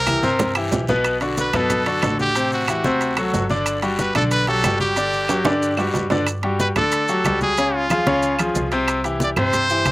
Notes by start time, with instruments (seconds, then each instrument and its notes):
Already playing: upright bass C2, trumpet A#4
0.06 grand piano E3 E4 G4, high conga, high timbale, low timbale, short guiro, claves, maracas
0.23 upright bass G2, grand piano C3 C4 C5, high conga, short guiro, maracas
0.39 low conga, high timbale, long guiro, maracas
0.55 grand piano E3 E4 G4, high timbale, claves, maracas
0.72 upright bass B1, low conga, low timbale, short guiro, maracas
0.87 grand piano B2 B3 B4, low conga, short guiro, maracas
1.04 high conga, high timbale, long guiro, claves, maracas
1.21 grand piano D3 D4 F#4, high conga, high timbale, maracas
1.37 trumpet B4, high conga, low timbale, short guiro, maracas
1.53 upright bass F#2, grand piano B2 B3 B4, trumpet A4, low conga, high timbale, short guiro, claves, maracas
1.70 high conga, low conga, high timbale, long guiro, maracas
1.86 grand piano D3 D4 F#4, high conga, high timbale, maracas
2.02 upright bass A1, grand piano D3 D4 F#4, high conga, high timbale, low timbale, short guiro, claves, maracas
2.19 trumpet G4, high conga, short guiro, maracas
2.35 grand piano C3 C4 C5, high conga, high timbale, long guiro, maracas
2.52 trumpet F#4, high conga, maracas
2.68 grand piano E3 E4 G4, high conga, high timbale, low timbale, short guiro, claves, maracas
2.84 upright bass D2, grand piano C3 C4 C5, high conga, short guiro, maracas
3.01 high conga, high timbale, long guiro, maracas
3.17 grand piano F#3 F#4 A4, high conga, high timbale, claves, maracas
3.33 upright bass G1, high conga, low timbale, short guiro, maracas
3.50 grand piano D3 D4 D5, high conga, short guiro, maracas
3.66 high conga, high timbale, long guiro, claves, maracas
3.82 grand piano G3 F#4 G4, high conga, high timbale, maracas
3.99 trumpet B4, high conga, low timbale, short guiro, maracas
4.15 upright bass B1, grand piano D3 D4 D5, trumpet A4, low conga, high timbale, short guiro, claves, maracas
4.31 trumpet B4, high conga, high timbale, long guiro, maracas
4.47 grand piano F#3 F#4 G4, trumpet A4, high conga, high timbale, maracas
4.64 upright bass G1, grand piano G3 F#4 G4, high conga, high timbale, low timbale, short guiro, claves, maracas
4.80 trumpet G4, high conga, short guiro, maracas
4.96 grand piano D3 D4 D5, high conga, high timbale, long guiro, maracas
5.12 high conga, maracas
5.28 grand piano F#3 F#4 G4, high conga, high timbale, short guiro, claves, maracas
5.45 upright bass G2, grand piano D3 D4 D5, high conga, high timbale, short guiro, maracas
5.62 high conga, long guiro, maracas
5.77 grand piano G3 F#4 G4, high conga, low timbale, claves, maracas
5.94 upright bass G2, high conga, low timbale, short guiro, maracas
6.10 grand piano D3 D4 D5, high conga, low timbale, short guiro, maracas
6.27 high conga, high timbale, claves, maracas
6.43 grand piano G3 F#4 G4, high conga, high timbale
6.60 trumpet B4, high conga, maracas
6.76 upright bass D2, grand piano D3 D4 D5, trumpet A4, high conga, low conga, high timbale, claves, maracas
6.92 high conga, high timbale, maracas
7.08 grand piano F#3 F#4 G4, high conga, maracas
7.25 upright bass C#2, grand piano G3 F#4 G4, high conga, high timbale, low timbale, claves, maracas
7.41 trumpet G#4, high conga, maracas
7.57 grand piano C#3 C#4 C#5, high conga, high timbale, maracas
7.74 trumpet F4, high conga
7.90 grand piano F3 F4 G#4, high conga, high timbale, claves, maracas
8.06 upright bass C#2, grand piano C#3 C#4 C#5, high conga, high timbale, maracas
8.22 high conga, maracas
8.39 grand piano F3 F4 G#4, high conga, high timbale, claves, maracas
8.55 upright bass C2, high conga, low timbale, maracas
8.72 grand piano C3 C4 C5, high timbale, maracas
8.88 high conga, high timbale, claves, maracas
9.04 grand piano E3 E4 G4, high conga, high timbale, maracas
9.20 trumpet D5, high conga, maracas
9.36 upright bass G2, grand piano C3 C4 C5, trumpet C5, high conga, low conga, high timbale, claves, maracas
9.53 high conga, low conga, high timbale, maracas
9.69 grand piano E3 E4 G4, high conga, maracas
9.85 upright bass C2, grand piano E3 E4 G4, high conga, high timbale, claves, maracas